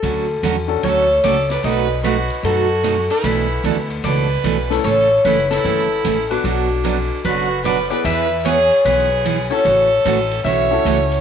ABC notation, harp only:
X:1
M:4/4
L:1/8
Q:"Swing" 1/4=150
K:D
V:1 name="Harp"
A4 c2 d d | ^d2 B2 A3 B- | B3 z d4 | c2 B A4 F- |
F4 B2 d d | e2 c2 B3 c- | c4 e4 |]